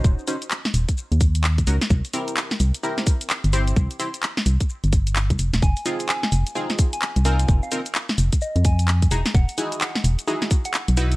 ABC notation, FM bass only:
X:1
M:4/4
L:1/16
Q:"Swing 16ths" 1/4=129
K:Fphr
V:1 name="FM bass" clef=bass
E,,, z4 z E,,, z2 E,,4- E,, D,, z | C,, z4 z C,, z6 =G,,,3 | C,, z4 z C,, z2 =G,,,4 C,, F,,, E,,, | F,,, z4 z F,,, z6 C,,3 |
F,,, z4 z F,,, z2 F,,4- F,, =E,,, z | =E,,, z4 z E,,, z6 =B,,,3 |]